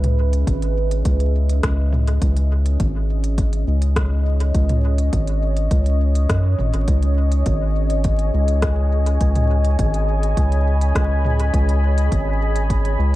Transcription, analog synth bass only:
Already playing: C#2
0.47 G#1
1.05 C#2
1.64 C#2
2.22 C#2
2.80 G#1
3.67 C#2
4.54 C#2
5.13 G#1
5.71 C#2
6.30 F#2
6.59 G#1
6.74 G#1
6.88 C#2
7.46 G#1
8.34 C#2
9.21 C#2
9.79 G#1
10.37 C#2
10.95 C#2
11.54 C#2
12.12 G#1
12.99 C#2

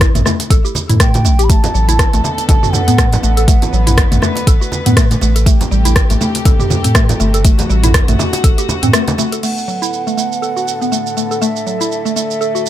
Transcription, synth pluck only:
0.15 A3
0.25 A3
0.50 A4
0.65 G4
0.89 E4
1.00 A3
1.25 A3
1.39 G4
1.50 A3
1.74 F#3
1.88 E4
2.13 A3
2.24 A3
2.49 A4
2.63 F#4
2.88 B3
2.98 A3
3.23 A3
3.37 A4
3.48 A3
3.73 F#3
3.87 E4
4.12 A3
4.22 A3
4.47 A4
4.61 F#4
4.86 B3
4.97 A3
5.22 A3
5.36 A4
5.46 A3
5.71 G3
5.85 E4
6.10 A3
6.21 A3
6.45 A4
6.60 G4
6.84 C4
6.95 A3
7.20 A3
7.34 A4
7.45 A3
7.70 G3
7.84 E4
8.08 A3
8.19 A3
8.44 A4
8.58 G4
8.83 C4
8.94 A3
9.18 A3
9.33 A4
9.43 A3
9.68 F#3
9.82 E4
10.07 A3
10.17 A3
10.42 A4
10.56 F#4
10.81 B3
10.92 A3
11.17 A3
11.31 A4
11.42 A3
11.67 F#3
11.81 E4
12.05 A3
12.16 A3
12.41 A4
12.55 F#4

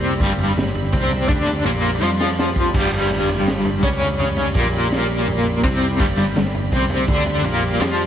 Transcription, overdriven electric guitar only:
Already playing: C3 C4
0.21 G2 G3
0.57 G2
0.93 C3 C4
1.28 D3 D4
1.66 A#2 A#3
2.01 F3 F4
2.75 G2 G3
3.83 C#3 C#4
4.54 A#2 A#3
5.63 C3 C4
6.00 G2 G3
6.37 G2
6.73 C3 C4
7.09 D3 D4
7.44 A#2 A#3
7.81 F3 F4

